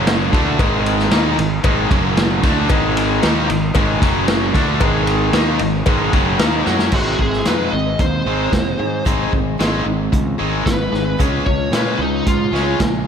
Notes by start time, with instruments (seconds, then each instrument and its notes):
Already playing: fingered electric bass F#1, overdriven electric guitar F#2 C#3 F#3
0.07 snare, ride, cowbell
0.32 fingered electric bass D2, overdriven electric guitar D3 A3 D4, kick, ride
0.58 fingered electric bass G#1, overdriven electric guitar G#2 D#3 G#3, kick, ride, cowbell
0.86 ride
0.99 snare
1.11 fingered electric bass D#2, overdriven electric guitar D#3 A#3 D#4, snare, ride, cowbell
1.38 fingered electric bass G#1, overdriven electric guitar G#2 D#3, ride
1.64 fingered electric bass G#1, overdriven electric guitar G#2 D#3 G#3, kick, ride, cowbell
1.90 fingered electric bass F#1, overdriven electric guitar F#2 C#3 F#3, kick, ride
2.17 snare, ride, cowbell
2.42 fingered electric bass D2, overdriven electric guitar D3 A3 D4, kick, snare, ride
2.69 fingered electric bass G#1, overdriven electric guitar G#2 D#3 G#3, kick, ride, cowbell
2.97 ride
3.22 fingered electric bass D#2, overdriven electric guitar D#3 A#3 D#4, snare, ride, cowbell
3.48 fingered electric bass G#1, overdriven electric guitar G#2 D#3, ride
3.75 fingered electric bass G#1, overdriven electric guitar G#2 D#3 G#3, kick, ride, cowbell
4.00 fingered electric bass F#1, overdriven electric guitar F#2 C#3 F#3, kick, snare, ride
4.28 snare, ride, cowbell
4.53 fingered electric bass D2, overdriven electric guitar D3 A3 D4, kick, snare, ride
4.80 fingered electric bass G#1, overdriven electric guitar G#2 D#3 G#3, kick, ride, cowbell
5.07 ride
5.33 fingered electric bass D#2, overdriven electric guitar D#3 A#3 D#4, snare, ride, cowbell
5.59 fingered electric bass G#1, overdriven electric guitar G#2 D#3, ride
5.86 fingered electric bass G#1, overdriven electric guitar G#2 D#3 G#3, kick, ride, cowbell
6.13 fingered electric bass F#1, overdriven electric guitar F#2 C#3 F#3, kick, ride
6.39 fingered electric bass D#2, overdriven electric guitar D#3 A#3 D#4, snare, ride, cowbell
6.66 fingered electric bass F#2, overdriven electric guitar F#3 C#4 F#4, snare
6.79 snare
6.92 fingered electric bass G#1, steel-string acoustic guitar G#2 D#3 G#3 C4 D#4 G#4, overdriven electric guitar G#2 D#3 G#3 C4 D#4, lead electric guitar F#4, kick, crash
7.19 fingered electric bass G#1, overdriven electric guitar G#2 D#3 G#3 C4, steel-string acoustic guitar G#3 C4 D#4 G#4, lead electric guitar G#4, kick
7.33 snare
7.45 fingered electric bass F2, overdriven electric guitar G#2 D#3 G#3 C4 D#4, steel-string acoustic guitar G#3 C4 D#4 G#4, lead electric guitar B4, snare, closed hi-hat
7.72 fingered electric bass G#1, overdriven electric guitar G#2 D#3 G#3 C4, lead electric guitar D#5
7.99 fingered electric bass D#2, overdriven electric guitar G#2 D#3 G#3 C4, lead electric guitar C5, kick, closed hi-hat
8.25 fingered electric bass G#1, overdriven electric guitar G#2 D#3 G#3 C4 D#4, steel-string acoustic guitar G#3 C4 D#4 G#4
8.52 fingered electric bass F1, overdriven electric guitar G#2 D#3 G#3 C4, steel-string acoustic guitar G#3 C4 D#4 G#4, kick, snare, closed hi-hat
8.78 overdriven electric guitar G#2 D#3 G#3 C4, fingered electric bass G#2, steel-string acoustic guitar G#3 C4 D#4 G#4
9.05 fingered electric bass G#1, steel-string acoustic guitar G#2 D#3 G#3 C4 D#4 G#4, overdriven electric guitar G#2 D#3 G#3 C4 D#4, kick, closed hi-hat
9.31 fingered electric bass G#1, overdriven electric guitar G#2 D#3 G#3 C4, steel-string acoustic guitar G#3 C4 D#4 G#4, kick
9.58 fingered electric bass G#1, overdriven electric guitar G#2 D#3 G#3 C4 D#4, steel-string acoustic guitar G#3 C4 D#4 G#4, snare, closed hi-hat
9.86 fingered electric bass G#1, overdriven electric guitar G#2 D#3 G#3 C4
10.12 fingered electric bass C#2, overdriven electric guitar G#2 D#3 G#3 C4, kick, closed hi-hat
10.38 fingered electric bass G#1, overdriven electric guitar G#2 D#3 G#3 C4 D#4, steel-string acoustic guitar G#3 C4 D#4 G#4
10.65 fingered electric bass G#1, overdriven electric guitar G#2 D#3 G#3 C4, steel-string acoustic guitar G#3 C4 D#4, lead electric guitar B4, kick, snare, closed hi-hat
10.92 fingered electric bass G#1, overdriven electric guitar G#2 D#3 G#3 C4, steel-string acoustic guitar G#3 C4 D#4 G#4, snare
11.18 fingered electric bass C#2, steel-string acoustic guitar C#3 G#3 C#4 F4 G#4, overdriven electric guitar C#3 G#3 C#4, kick, closed hi-hat
11.45 fingered electric bass C#2, overdriven electric guitar C#3 G#3, steel-string acoustic guitar C#4 F4 G#4, lead electric guitar C#5, kick
11.71 fingered electric bass A#2, overdriven electric guitar C#3 G#3, steel-string acoustic guitar G#3 C#4 G#4, snare, closed hi-hat
11.75 overdriven electric guitar C#4, lead electric guitar B4
11.99 fingered electric bass C#2, overdriven electric guitar C#3 G#3, lead electric guitar D#4
12.26 fingered electric bass G#2, overdriven electric guitar C#3 G#3, lead electric guitar F4, kick, closed hi-hat
12.52 fingered electric bass C#2, overdriven electric guitar C#3 G#3 C#4, steel-string acoustic guitar C#4 F4 G#4, snare
12.78 fingered electric bass A#1, overdriven electric guitar C#3 G#3, steel-string acoustic guitar G#3 C#4 F4 G#4, kick, snare, closed hi-hat